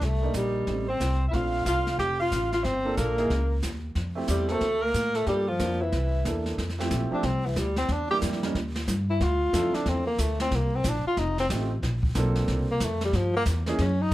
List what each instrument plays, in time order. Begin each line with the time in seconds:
0.01 upright bass C2, tenor saxophone A3, brush sweep, kick, snare
0.22 grand piano G3 A#3 D4 D#4
0.34 upright bass A#1, tenor saxophone G3, kick, snare, hi-hat pedal
0.67 upright bass A1, grand piano G3 A3 C4 D#4, brush sweep, kick, snare
0.88 tenor saxophone C4, alto saxophone C5
1.00 upright bass C2, kick, snare, hi-hat pedal
1.28 tenor saxophone E4, alto saxophone E5
1.33 upright bass A#1, grand piano A3 C4 D4 F4, tenor saxophone F4, alto saxophone F5, brush sweep, kick, snare
1.65 upright bass C2, tenor saxophone F4, alto saxophone F5, kick, snare, hi-hat pedal
1.87 snare
1.99 upright bass F1, tenor saxophone G4, alto saxophone G5, brush sweep, kick, snare
2.20 tenor saxophone F4, alto saxophone F5
2.32 upright bass A1, kick, snare, hi-hat pedal
2.51 tenor saxophone F4, alto saxophone F5, snare
2.64 upright bass G1, tenor saxophone C4, alto saxophone C5, brush sweep, kick, snare
2.85 grand piano A#3 D4 F4 A4
2.97 upright bass A#1, tenor saxophone A#3, alto saxophone A#4, kick, snare, hi-hat pedal
3.17 grand piano A#3 D#4 E4 G#4, snare
3.30 upright bass C#2, brush sweep, kick, snare
3.62 upright bass D#2, kick, snare, hi-hat pedal
3.95 upright bass F2, brush sweep, kick, snare
4.15 grand piano A3 C4 E4 G4
4.28 upright bass E2, tenor saxophone G3, alto saxophone G4, kick, snare, hi-hat pedal
4.48 tenor saxophone A3, grand piano A#3 C4 F#4 C5, alto saxophone A4, snare
4.61 upright bass D2, brush sweep, kick, snare
4.82 tenor saxophone A#3, alto saxophone A#4
4.94 upright bass A2, kick, snare, hi-hat pedal
5.14 tenor saxophone A3, alto saxophone A4, snare
5.26 upright bass G2, tenor saxophone G3, grand piano A#3 D4 F4 A4, alto saxophone G4, brush sweep, kick, snare
5.48 tenor saxophone F3, alto saxophone F4
5.59 upright bass F2, grand piano A#3 D4 F4 C5, kick, snare, hi-hat pedal
5.81 tenor saxophone E3, alto saxophone E4
5.92 upright bass C2, brush sweep, kick, snare
6.25 upright bass E2, grand piano A#3 D4 E4 A4, kick, snare, hi-hat pedal
6.46 snare
6.58 upright bass F2, brush sweep, kick, snare
6.69 snare
6.79 grand piano F3 A3 C4 E4 G4, snare
6.90 upright bass A#1, kick, snare, hi-hat pedal
7.11 grand piano F3 A3 C4 E4 G4, tenor saxophone D4, muted upright bass stroke
7.23 upright bass C2, tenor saxophone C4, brush sweep, kick, snare
7.46 tenor saxophone E3
7.56 upright bass D2, tenor saxophone G3, kick, snare, hi-hat pedal
7.76 tenor saxophone C4, snare
7.88 upright bass E2, tenor saxophone D4, brush sweep, kick, snare
8.10 grand piano G3 A#3 D4 E4 G4, tenor saxophone G4
8.21 upright bass F2, kick, snare, hi-hat pedal
8.33 snare
8.43 grand piano G3 A#3 C#4 D#4 A#4, snare
8.55 upright bass D#2, brush sweep, kick, snare
8.76 snare
8.87 upright bass G2, kick, snare, hi-hat pedal
9.10 tenor saxophone E4
9.20 upright bass D2, tenor saxophone F4, brush sweep, kick, snare
9.52 upright bass F2, grand piano F3 C4 D4 E4 A4, kick, snare, hi-hat pedal
9.74 tenor saxophone D4, muted upright bass stroke, snare
9.86 upright bass E2, tenor saxophone C4, brush sweep, kick, snare
10.07 tenor saxophone A#3
10.18 upright bass D2, tenor saxophone A3, kick, snare, hi-hat pedal
10.40 tenor saxophone C4, snare
10.51 upright bass C2, tenor saxophone A#3, brush sweep, kick, snare
10.76 tenor saxophone C4
10.84 upright bass A#1, kick, snare, hi-hat pedal
10.88 tenor saxophone D4
11.05 tenor saxophone F4, muted upright bass stroke
11.17 upright bass F1, tenor saxophone D#4, brush sweep, kick, snare
11.38 tenor saxophone C4, snare
11.50 upright bass A1, grand piano A3 C4 D#4 F4 G4, kick, snare, hi-hat pedal
11.82 upright bass A#1, brush sweep, kick, snare
12.03 kick
12.15 upright bass B1, grand piano A#3 C4 D4 F4 A4, kick, snare, hi-hat pedal
12.36 snare
12.48 upright bass C2, brush sweep, kick, snare
12.71 tenor saxophone A#3
12.80 upright bass F2, kick, snare, hi-hat pedal
12.84 tenor saxophone A3
13.01 tenor saxophone G3, snare
13.13 upright bass G2, tenor saxophone F3, brush sweep, kick, snare
13.36 tenor saxophone A#3
13.45 upright bass E2, kick, snare, hi-hat pedal
13.66 grand piano E3 A#3 C#4 D#4 G#4, snare
13.79 upright bass F#2, tenor saxophone C#4, brush sweep, kick, snare
14.01 tenor saxophone D#4